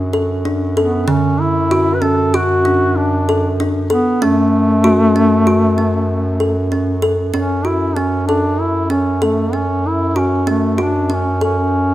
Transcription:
0.00 1.04 F#2 medium
0.13 0.31 A4 medium
0.45 0.63 D4 medium
0.77 1.11 B3 medium
0.77 0.95 A4 medium
1.07 4.05 F#2 medium
1.07 1.43 D3 medium
1.07 1.42 C#4 medium
1.40 1.96 E4 medium
1.71 1.89 F#4 medium
1.95 2.04 B4 medium
2.02 2.20 C#4 medium
2.02 2.36 A4 medium
2.34 2.52 F#4 medium
2.34 2.99 F#4 medium
2.65 3.01 D4 medium
2.98 3.59 D4 medium
3.29 3.46 A4 medium
3.60 3.77 D4 medium
3.90 4.24 B3 medium
3.90 4.08 A4 medium
4.22 7.31 F#2 medium
4.22 6.73 A3 loud
4.22 4.57 C#4 medium
4.84 5.02 F#4 medium
5.16 5.34 C#4 medium
5.47 5.65 F#4 medium
5.78 6.14 C#4 medium
6.40 6.58 A4 medium
6.72 6.90 C#4 medium
7.02 7.20 A4 medium
7.34 11.94 F#2 medium
7.34 7.52 C#4 medium
7.34 7.68 C#4 medium
7.65 7.98 E4 medium
7.65 7.83 F#4 medium
7.96 8.26 C#4 medium
7.96 8.15 C#4 medium
8.27 8.62 D4 medium
8.27 8.64 A4 medium
8.61 8.90 E4 medium
8.90 9.08 C#4 medium
8.90 9.25 C#4 medium
9.22 9.56 A3 medium
9.22 9.40 A4 medium
9.53 9.89 C#4 medium
9.53 9.88 C#4 medium
9.87 10.19 E4 medium
10.16 10.48 C#4 medium
10.16 10.34 F#4 medium
10.47 10.82 A3 medium
10.47 10.65 C#4 medium
10.78 11.15 D4 medium
10.78 10.96 F#4 medium
11.10 11.28 C#4 medium
11.14 11.44 C#4 medium
11.41 11.94 C#4 medium
11.41 11.77 A4 medium

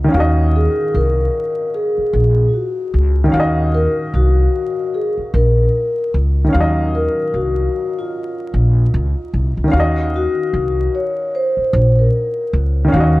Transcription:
0.00 0.11 F#4 medium
0.00 0.13 D#5 medium
0.04 3.22 D#3 medium
0.08 3.26 C#4 medium
0.08 3.28 F5 medium
0.14 0.66 D#2 loud
0.14 3.30 F#4 medium
0.20 3.32 D#5 medium
0.56 0.95 G#4 medium
0.94 1.27 C2 medium
0.94 1.70 A#4 medium
1.75 2.50 G#4 medium
1.98 muted upright bass stroke soft
2.13 2.46 A#1 medium
2.49 2.54 F4 soft
2.54 3.13 F#4 medium
2.94 3.26 C#2 medium
3.24 6.43 D#3 medium
3.24 6.46 C#4 medium
3.32 3.86 D#2 loud
3.32 6.48 F5 medium
3.36 6.50 F#4 medium
3.36 6.52 D#5 medium
3.74 3.92 A#4 loud
4.14 4.46 C2 medium
4.14 4.96 F#4 medium
4.94 5.12 G#4 medium
5.17 muted upright bass stroke soft
5.34 5.66 A#1 medium
5.34 6.09 A#4 medium
6.14 6.46 C#2 medium
6.44 9.63 D#3 medium
6.49 9.66 C#4 medium
6.49 9.69 F5 medium
6.54 7.06 D#2 loud
6.54 9.71 F#3 medium
6.60 9.73 D#5 medium
6.95 7.35 A#4 loud
7.34 7.66 C2 medium
7.34 7.93 F#4 medium
7.99 9.30 F4 medium
8.54 8.86 A#1 medium
8.94 9.13 C#2 loud
9.34 9.53 C2 medium
9.57 9.70 C#2 medium
9.64 12.83 D#3 medium
9.64 12.86 C#4 medium
9.71 10.25 D#2 loud
9.71 12.88 F5 medium
9.76 12.90 F#4 medium
9.80 12.92 D#5 medium
10.16 10.97 F#4 medium
10.53 10.86 C2 medium
10.95 11.35 C#5 medium
11.35 11.99 C5 loud
11.57 muted upright bass stroke soft
11.73 12.06 A#1 loud
11.99 12.50 A#4 medium
12.53 12.86 C#2 loud
12.84 13.20 D#3 medium
12.84 13.20 C#4 medium
12.92 13.20 D#2 loud
12.92 13.20 F5 medium
12.96 13.20 F#4 medium
12.96 13.20 D#5 medium

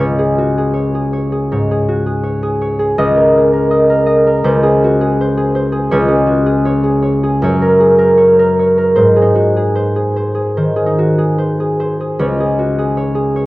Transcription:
0.00 2.97 C#2 soft
0.00 2.49 F4 soft
0.00 0.18 G#4 soft
0.00 0.73 C#5 medium
0.00 3.00 F5 soft
0.19 0.57 G#4 soft
0.38 0.70 F#4 soft
0.58 0.94 G#4 soft
0.74 1.12 C#5 soft
0.95 1.31 G#4 soft
1.13 1.51 C#5 soft
1.32 1.70 G#4 soft
1.52 3.02 G#2 soft
1.52 2.22 C#5 soft
1.71 2.05 G#4 soft
1.88 2.19 F#4 soft
2.06 2.41 G#4 soft
2.23 2.60 C#5 soft
2.42 2.78 G#4 soft
2.61 4.47 C#5 soft
2.79 3.00 G#4 soft
2.98 4.43 C#2 medium
2.98 3.70 D#5 medium
3.16 3.52 A#4 soft
3.37 3.67 G#4 soft
3.53 3.89 A#4 soft
3.71 4.05 D#5 soft
3.90 4.25 A#4 soft
4.06 5.93 D#5 soft
4.27 4.47 A#4 soft
4.44 5.91 C#2 medium
4.44 5.20 C5 medium
4.63 5.00 G#4 soft
4.84 5.13 F#4 soft
5.01 5.36 G#4 soft
5.21 5.54 C5 soft
5.37 5.71 G#4 soft
5.55 5.94 C5 soft
5.72 6.07 G#4 soft
5.91 7.45 C#2 medium
5.91 6.64 C#5 medium
6.08 6.45 G#4 soft
6.26 6.58 F#4 soft
6.46 6.82 G#4 soft
6.65 7.01 C#5 medium
6.83 7.22 G#4 soft
7.02 7.42 C#5 soft
7.23 7.45 G#4 soft
7.42 9.01 F#2 medium
7.42 8.16 C#5 medium
7.62 7.97 A#4 medium
7.80 8.13 G#4 soft
7.99 8.38 A#4 soft
8.18 8.58 C#5 soft
8.39 8.77 A#4 medium
8.59 9.01 C#5 soft
8.78 9.01 A#4 soft
8.96 12.21 G#2 soft
8.96 9.74 C5 medium
9.16 9.55 G#4 soft
9.22 10.85 D#4 soft
9.35 9.70 F#4 soft
9.56 9.94 G#4 soft
9.75 10.15 C5 soft
9.96 10.33 G#4 soft
10.16 10.55 C5 soft
10.34 10.75 G#4 soft
10.57 12.21 D#3 soft
10.57 11.37 C5 soft
10.76 11.17 G#4 soft
10.86 12.22 D#4 soft
10.99 11.33 F#4 soft
11.19 11.59 G#4 soft
11.38 11.79 C5 soft
11.60 11.99 G#4 soft
11.80 12.22 C5 soft
12.00 12.39 G#4 soft
12.19 13.46 C#2 medium
12.19 12.96 C#5 medium
12.40 12.77 G#4 soft
12.59 12.91 F#4 soft
12.78 13.14 G#4 soft
12.97 13.35 C#5 soft
13.15 13.46 G#4 soft
13.36 13.46 C#5 soft

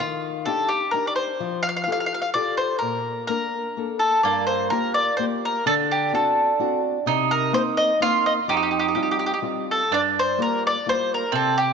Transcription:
0.00 0.45 D#3 medium
0.00 0.48 F4 medium
0.46 0.84 D4 soft
0.46 0.84 D#4 soft
0.46 0.84 G4 soft
0.46 0.68 A4 medium
0.69 0.91 G4 medium
0.91 1.31 D4 soft
0.91 1.31 D#4 soft
0.91 1.31 G4 soft
0.91 1.07 A#4 medium
1.07 1.15 D5 medium
1.16 1.60 C5 medium
1.40 1.86 F3 medium
1.63 1.68 F5 medium
1.69 1.75 F5 medium
1.77 1.83 F5 medium
1.84 2.25 F4 soft
1.84 1.91 F5 medium
1.88 2.25 G4 soft
1.88 2.25 A4 medium
1.92 1.99 F5 medium
2.00 2.05 F5 medium
2.06 2.13 F5 medium
2.14 2.20 F5 medium
2.22 2.29 F5 medium
2.34 2.72 F4 soft
2.34 2.72 G4 soft
2.34 2.73 A4 soft
2.34 2.56 D5 medium
2.57 2.78 C5 medium
2.79 3.27 A#2 medium
2.79 3.24 A#4 medium
3.27 3.67 A#3 soft
3.27 3.68 D4 soft
3.27 3.97 A#4 medium
3.27 3.68 A#4 soft
3.77 4.15 A#3 soft
3.77 4.16 D4 soft
3.77 4.16 A4 soft
3.99 4.23 A4 medium
4.23 4.70 G2 medium
4.23 5.63 A#3 medium
4.23 4.46 D5 medium
4.47 4.70 C5 medium
4.70 5.10 A#3 soft
4.70 5.10 F4 soft
4.70 5.10 G4 soft
4.70 4.94 A#4 medium
4.94 5.16 D5 medium
5.17 5.57 A#3 soft
5.17 5.57 F4 soft
5.17 5.58 G4 soft
5.17 5.24 C5 medium
5.45 5.66 A#4 medium
5.66 6.12 D3 medium
5.66 7.11 D4 medium
5.66 5.73 A4 medium
5.91 6.13 G4 medium
6.13 6.50 C4 soft
6.13 6.51 D4 soft
6.13 6.51 F#4 medium
6.13 6.80 A4 medium
6.59 6.97 C4 soft
6.59 6.97 D4 soft
6.59 6.97 F#4 medium
7.06 7.52 C3 medium
7.06 8.02 D#4 loud
7.31 7.52 A#4 medium
7.53 7.91 A#3 soft
7.53 7.91 C4 soft
7.53 7.91 D#4 medium
7.53 7.61 C5 medium
7.77 7.99 D#5 medium
8.00 8.39 A#3 soft
8.00 8.38 C4 soft
8.00 8.38 D#4 soft
8.00 8.49 F4 loud
8.00 8.24 F5 loud
8.26 8.32 D#5 medium
8.48 8.94 F2 medium
8.48 9.64 D#4 medium
8.48 8.56 G4 medium
8.57 8.62 G4 soft
8.63 8.70 G4 soft
8.71 8.78 G4 soft
8.79 8.85 G4 medium
8.88 8.94 G4 soft
8.95 9.33 G3 soft
8.95 9.34 C4 soft
8.95 9.34 F4 soft
8.95 9.01 G4 soft
9.03 9.08 G4 soft
9.11 9.16 G4 soft
9.19 9.24 G4 soft
9.26 9.31 G4 medium
9.34 9.38 G4 soft
9.42 9.81 G3 soft
9.42 9.81 C4 soft
9.42 9.81 F4 soft
9.71 9.94 A4 medium
9.91 10.37 G2 medium
9.91 11.32 D4 medium
9.91 10.00 D5 medium
10.19 10.39 C5 medium
10.38 10.76 G3 soft
10.38 10.76 A#3 soft
10.38 10.77 F4 soft
10.38 10.63 A#4 medium
10.67 10.86 D5 medium
10.86 11.23 G3 soft
10.86 11.23 A#3 soft
10.86 11.24 F4 soft
10.86 11.12 C5 medium
11.14 11.33 A#4 medium
11.32 11.73 C3 medium
11.32 11.73 C4 medium
11.32 11.56 A4 medium
11.58 11.73 G4 medium

